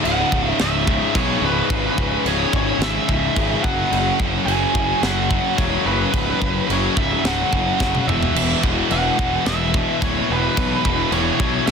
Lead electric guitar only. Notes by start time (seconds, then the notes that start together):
0.04 F#5
0.49 E5
0.61 E5
1.17 C#5
1.46 B4
2.27 C#5
2.56 C#5
2.82 E5
3.64 F#5
4.46 G#5
5.03 F#5
5.58 C#5
5.87 B4
6.73 C#5
6.97 E5
7.26 F#5
8.08 E5
8.92 F#5
9.46 E5
10.03 C#5
10.33 B4
11.13 C#5
11.41 C#5
11.66 E5